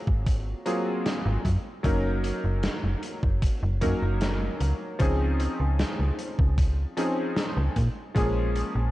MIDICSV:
0, 0, Header, 1, 4, 480
1, 0, Start_track
1, 0, Key_signature, -5, "major"
1, 0, Tempo, 789474
1, 1121, Time_signature, 4, 2, 24, 8
1, 5418, End_track
2, 0, Start_track
2, 0, Title_t, "Electric grand piano"
2, 0, Program_c, 0, 2
2, 0, Control_c, 0, 64, 127
2, 0, Note_on_c, 0, 54, 79
2, 0, Note_on_c, 0, 58, 73
2, 0, Note_on_c, 0, 60, 75
2, 0, Note_on_c, 0, 65, 73
2, 0, Note_on_c, 0, 68, 88
2, 369, Note_off_c, 0, 54, 0
2, 371, Note_off_c, 0, 58, 0
2, 372, Note_off_c, 0, 60, 0
2, 375, Note_off_c, 0, 65, 0
2, 378, Note_off_c, 0, 68, 0
2, 398, Note_on_c, 0, 54, 76
2, 400, Note_on_c, 0, 58, 70
2, 403, Note_on_c, 0, 60, 70
2, 405, Note_on_c, 0, 65, 71
2, 407, Note_on_c, 0, 68, 84
2, 520, Note_off_c, 0, 54, 0
2, 522, Note_off_c, 0, 58, 0
2, 523, Note_off_c, 0, 60, 0
2, 524, Note_off_c, 0, 65, 0
2, 525, Note_off_c, 0, 68, 0
2, 890, Control_c, 0, 64, 0
2, 1012, Control_c, 0, 64, 127
2, 1113, Note_on_c, 0, 54, 81
2, 1117, Note_on_c, 0, 58, 73
2, 1122, Note_on_c, 0, 61, 73
2, 1126, Note_on_c, 0, 63, 74
2, 1130, Note_on_c, 0, 70, 90
2, 2289, Note_off_c, 0, 54, 0
2, 2291, Note_off_c, 0, 58, 0
2, 2294, Note_off_c, 0, 61, 0
2, 2295, Note_off_c, 0, 63, 0
2, 2298, Note_off_c, 0, 70, 0
2, 2317, Note_on_c, 0, 54, 76
2, 2318, Note_on_c, 0, 58, 71
2, 2321, Note_on_c, 0, 61, 71
2, 2323, Note_on_c, 0, 63, 70
2, 2325, Note_on_c, 0, 70, 85
2, 2440, Note_off_c, 0, 54, 0
2, 2441, Note_off_c, 0, 58, 0
2, 2442, Note_off_c, 0, 61, 0
2, 2443, Note_off_c, 0, 63, 0
2, 2444, Note_off_c, 0, 70, 0
2, 3032, Note_on_c, 0, 53, 82
2, 3037, Note_on_c, 0, 60, 74
2, 3041, Note_on_c, 0, 61, 74
2, 3046, Note_on_c, 0, 63, 74
2, 3049, Control_c, 0, 64, 0
2, 3050, Note_on_c, 0, 68, 91
2, 3168, Control_c, 0, 64, 127
2, 4209, Note_off_c, 0, 53, 0
2, 4211, Note_off_c, 0, 60, 0
2, 4213, Note_off_c, 0, 61, 0
2, 4216, Note_off_c, 0, 63, 0
2, 4218, Note_off_c, 0, 68, 0
2, 4236, Note_on_c, 0, 53, 76
2, 4239, Note_on_c, 0, 60, 70
2, 4242, Note_on_c, 0, 61, 71
2, 4243, Note_on_c, 0, 63, 71
2, 4246, Note_on_c, 0, 68, 83
2, 4359, Note_off_c, 0, 53, 0
2, 4361, Note_off_c, 0, 60, 0
2, 4362, Note_off_c, 0, 61, 0
2, 4363, Note_off_c, 0, 63, 0
2, 4365, Note_off_c, 0, 68, 0
2, 4729, Control_c, 0, 64, 0
2, 4841, Control_c, 0, 64, 127
2, 4952, Note_on_c, 0, 53, 81
2, 4956, Note_on_c, 0, 56, 76
2, 4961, Note_on_c, 0, 58, 75
2, 4966, Note_on_c, 0, 61, 75
2, 4970, Note_on_c, 0, 68, 90
2, 5418, Note_off_c, 0, 53, 0
2, 5418, Note_off_c, 0, 56, 0
2, 5418, Note_off_c, 0, 58, 0
2, 5418, Note_off_c, 0, 61, 0
2, 5418, Note_off_c, 0, 68, 0
2, 5418, End_track
3, 0, Start_track
3, 0, Title_t, "FM bass"
3, 0, Program_c, 1, 39
3, 44, Note_on_c, 1, 32, 82
3, 330, Note_off_c, 1, 32, 0
3, 764, Note_on_c, 1, 32, 94
3, 837, Note_off_c, 1, 32, 0
3, 881, Note_on_c, 1, 42, 81
3, 958, Note_off_c, 1, 42, 0
3, 1120, Note_on_c, 1, 30, 98
3, 1410, Note_off_c, 1, 30, 0
3, 1485, Note_on_c, 1, 30, 88
3, 1632, Note_off_c, 1, 30, 0
3, 1724, Note_on_c, 1, 30, 82
3, 1797, Note_off_c, 1, 30, 0
3, 1964, Note_on_c, 1, 30, 84
3, 2111, Note_off_c, 1, 30, 0
3, 2205, Note_on_c, 1, 30, 92
3, 2321, Note_on_c, 1, 42, 92
3, 2330, Note_off_c, 1, 30, 0
3, 2398, Note_off_c, 1, 42, 0
3, 2445, Note_on_c, 1, 30, 92
3, 2731, Note_off_c, 1, 30, 0
3, 2800, Note_on_c, 1, 37, 84
3, 2877, Note_off_c, 1, 37, 0
3, 3041, Note_on_c, 1, 37, 98
3, 3330, Note_off_c, 1, 37, 0
3, 3404, Note_on_c, 1, 37, 88
3, 3551, Note_off_c, 1, 37, 0
3, 3644, Note_on_c, 1, 37, 80
3, 3717, Note_off_c, 1, 37, 0
3, 3883, Note_on_c, 1, 37, 86
3, 4170, Note_off_c, 1, 37, 0
3, 4603, Note_on_c, 1, 37, 93
3, 4676, Note_off_c, 1, 37, 0
3, 4721, Note_on_c, 1, 46, 85
3, 4798, Note_off_c, 1, 46, 0
3, 4960, Note_on_c, 1, 34, 95
3, 5249, Note_off_c, 1, 34, 0
3, 5322, Note_on_c, 1, 34, 88
3, 5418, Note_off_c, 1, 34, 0
3, 5418, End_track
4, 0, Start_track
4, 0, Title_t, "Drums"
4, 44, Note_on_c, 9, 36, 101
4, 105, Note_off_c, 9, 36, 0
4, 161, Note_on_c, 9, 36, 120
4, 161, Note_on_c, 9, 42, 94
4, 221, Note_off_c, 9, 42, 0
4, 222, Note_off_c, 9, 36, 0
4, 400, Note_on_c, 9, 42, 76
4, 461, Note_off_c, 9, 42, 0
4, 643, Note_on_c, 9, 42, 89
4, 645, Note_on_c, 9, 38, 116
4, 704, Note_off_c, 9, 42, 0
4, 706, Note_off_c, 9, 38, 0
4, 881, Note_on_c, 9, 36, 60
4, 882, Note_on_c, 9, 42, 73
4, 942, Note_off_c, 9, 36, 0
4, 943, Note_off_c, 9, 42, 0
4, 1121, Note_on_c, 9, 36, 121
4, 1122, Note_on_c, 9, 42, 85
4, 1182, Note_off_c, 9, 36, 0
4, 1183, Note_off_c, 9, 42, 0
4, 1362, Note_on_c, 9, 42, 81
4, 1422, Note_off_c, 9, 42, 0
4, 1599, Note_on_c, 9, 42, 86
4, 1603, Note_on_c, 9, 38, 122
4, 1660, Note_off_c, 9, 42, 0
4, 1664, Note_off_c, 9, 38, 0
4, 1840, Note_on_c, 9, 42, 73
4, 1901, Note_off_c, 9, 42, 0
4, 1964, Note_on_c, 9, 36, 107
4, 2025, Note_off_c, 9, 36, 0
4, 2081, Note_on_c, 9, 36, 122
4, 2082, Note_on_c, 9, 42, 94
4, 2142, Note_off_c, 9, 36, 0
4, 2143, Note_off_c, 9, 42, 0
4, 2319, Note_on_c, 9, 42, 82
4, 2321, Note_on_c, 9, 36, 61
4, 2380, Note_off_c, 9, 42, 0
4, 2382, Note_off_c, 9, 36, 0
4, 2558, Note_on_c, 9, 42, 86
4, 2564, Note_on_c, 9, 38, 110
4, 2619, Note_off_c, 9, 42, 0
4, 2625, Note_off_c, 9, 38, 0
4, 2799, Note_on_c, 9, 42, 78
4, 2860, Note_off_c, 9, 42, 0
4, 3037, Note_on_c, 9, 42, 90
4, 3041, Note_on_c, 9, 36, 123
4, 3097, Note_off_c, 9, 42, 0
4, 3102, Note_off_c, 9, 36, 0
4, 3281, Note_on_c, 9, 42, 73
4, 3342, Note_off_c, 9, 42, 0
4, 3522, Note_on_c, 9, 42, 86
4, 3523, Note_on_c, 9, 38, 127
4, 3583, Note_off_c, 9, 42, 0
4, 3584, Note_off_c, 9, 38, 0
4, 3762, Note_on_c, 9, 42, 69
4, 3822, Note_off_c, 9, 42, 0
4, 3884, Note_on_c, 9, 36, 110
4, 3945, Note_off_c, 9, 36, 0
4, 4000, Note_on_c, 9, 36, 120
4, 4002, Note_on_c, 9, 42, 87
4, 4061, Note_off_c, 9, 36, 0
4, 4063, Note_off_c, 9, 42, 0
4, 4240, Note_on_c, 9, 42, 84
4, 4301, Note_off_c, 9, 42, 0
4, 4479, Note_on_c, 9, 38, 121
4, 4483, Note_on_c, 9, 42, 84
4, 4539, Note_off_c, 9, 38, 0
4, 4544, Note_off_c, 9, 42, 0
4, 4719, Note_on_c, 9, 42, 80
4, 4720, Note_on_c, 9, 36, 62
4, 4780, Note_off_c, 9, 42, 0
4, 4781, Note_off_c, 9, 36, 0
4, 4960, Note_on_c, 9, 36, 118
4, 4963, Note_on_c, 9, 42, 92
4, 5021, Note_off_c, 9, 36, 0
4, 5024, Note_off_c, 9, 42, 0
4, 5202, Note_on_c, 9, 42, 72
4, 5263, Note_off_c, 9, 42, 0
4, 5418, End_track
0, 0, End_of_file